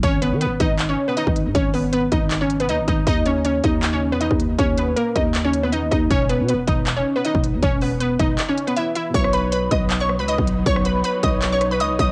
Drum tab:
HH |x-x-x-x-x---x-x-|x-o-x-x-x-xxx-x-|x-x-x-x-x---x-x-|x-x-x-x-x-x-x-x-|
CP |--------x-------|--------x-------|--------x-------|--------x-------|
SD |----------------|----------------|----------------|----------------|
BD |o-----o------o--|o-----o-------o-|o-----o------o--|o-----o-------o-|

HH |x-x-x-x-x---x-x-|x-o-x-x-x-xxx-x-|x-x-x-x-x---x-x-|x-x-x-x-x-x-x-x-|
CP |--------x-------|--------x-------|--------x-------|--------x-------|
SD |----------------|----------------|-r--------r-----|-r--------r-----|
BD |o-----o------o--|o-----o---------|o-----o------o--|o-----o-------o-|